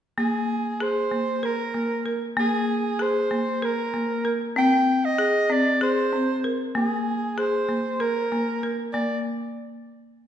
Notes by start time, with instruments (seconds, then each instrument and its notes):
0.18 marimba A#3, soprano saxophone G#4
0.80 marimba G#4, soprano saxophone C5
1.11 marimba A#3
1.43 marimba A#4, soprano saxophone A#4
1.74 marimba A#3
2.06 marimba A#4
2.37 marimba A#3, soprano saxophone G#4
2.99 marimba G#4, soprano saxophone C5
3.31 marimba A#3
3.62 marimba A#4, soprano saxophone A#4
3.94 marimba A#3
4.25 marimba A#4
4.56 marimba C4, soprano saxophone G5
5.05 soprano saxophone D#5
5.18 marimba G#4
5.50 marimba C4, soprano saxophone D5
5.81 marimba G#4, soprano saxophone C5
6.13 marimba C4
6.44 marimba A#4
6.75 marimba A#3, soprano saxophone G#4
7.38 marimba G#4, soprano saxophone C5
7.69 marimba A#3
8.00 marimba A#4, soprano saxophone A#4
8.32 marimba A#3
8.63 marimba A#4
8.93 marimba A#3, soprano saxophone D5